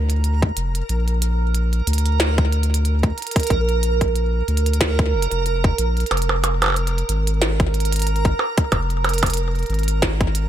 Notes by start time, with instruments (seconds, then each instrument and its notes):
Already playing: sub bass D2, synth texture A#4
0.10 closed hi-hat
0.24 closed hi-hat
0.42 kick
0.57 sub bass F1, closed hi-hat
0.75 closed hi-hat
0.89 sub bass A#1, closed hi-hat
1.08 closed hi-hat
1.22 closed hi-hat
1.55 closed hi-hat
1.73 closed hi-hat
1.87 sub bass D2, closed hi-hat
1.93 closed hi-hat
1.98 closed hi-hat
2.06 closed hi-hat
2.20 snare, closed hi-hat
2.38 kick, closed hi-hat
2.52 closed hi-hat
2.63 closed hi-hat
2.74 closed hi-hat
2.85 closed hi-hat
3.03 kick, closed hi-hat
3.18 closed hi-hat
3.22 closed hi-hat
3.27 closed hi-hat
3.31 closed hi-hat
3.36 kick, closed hi-hat
3.40 closed hi-hat
3.43 closed hi-hat
3.47 sub bass A#1, kick, closed hi-hat
3.50 closed hi-hat
3.69 closed hi-hat
3.83 closed hi-hat
4.01 kick, closed hi-hat
4.16 closed hi-hat
4.48 sub bass D2, closed hi-hat
4.57 closed hi-hat
4.66 closed hi-hat
4.74 closed hi-hat
4.81 kick, snare, closed hi-hat
4.99 kick, closed hi-hat
5.13 sub bass F1
5.22 closed hi-hat
5.32 sub bass F1, closed hi-hat
5.46 closed hi-hat
5.64 kick
5.78 sub bass A#1, closed hi-hat
5.97 closed hi-hat
6.00 closed hi-hat
6.06 closed hi-hat
6.11 sub bass F1, closed hi-hat, percussion blips
6.17 closed hi-hat
6.22 closed hi-hat
6.29 percussion blips
6.44 closed hi-hat, percussion blips
6.62 closed hi-hat, percussion blips
6.64 percussion blips
6.66 percussion blips
6.68 percussion blips
6.70 percussion blips
6.72 percussion blips
6.74 closed hi-hat, percussion blips
6.87 closed hi-hat
6.98 closed hi-hat
7.09 sub bass G#1, closed hi-hat
7.27 closed hi-hat
7.42 snare, closed hi-hat
7.60 kick, closed hi-hat
7.74 closed hi-hat
7.80 closed hi-hat
7.85 closed hi-hat
7.92 closed hi-hat
7.96 closed hi-hat
7.99 closed hi-hat
8.02 closed hi-hat
8.07 closed hi-hat
8.16 closed hi-hat
8.25 kick, closed hi-hat
8.39 percussion blips
8.58 kick, closed hi-hat
8.72 sub bass F1, kick, closed hi-hat, percussion blips
8.90 closed hi-hat
9.04 closed hi-hat, percussion blips
9.09 closed hi-hat
9.14 closed hi-hat
9.18 closed hi-hat
9.23 kick, closed hi-hat, percussion blips
9.26 closed hi-hat
9.30 closed hi-hat
9.34 closed hi-hat
9.37 closed hi-hat
9.55 closed hi-hat
9.59 closed hi-hat
9.63 closed hi-hat
9.66 sub bass G#1, closed hi-hat
9.70 closed hi-hat
9.74 closed hi-hat
9.79 closed hi-hat
9.83 closed hi-hat
9.88 closed hi-hat
10.02 kick, snare, closed hi-hat
10.21 kick, closed hi-hat
10.35 closed hi-hat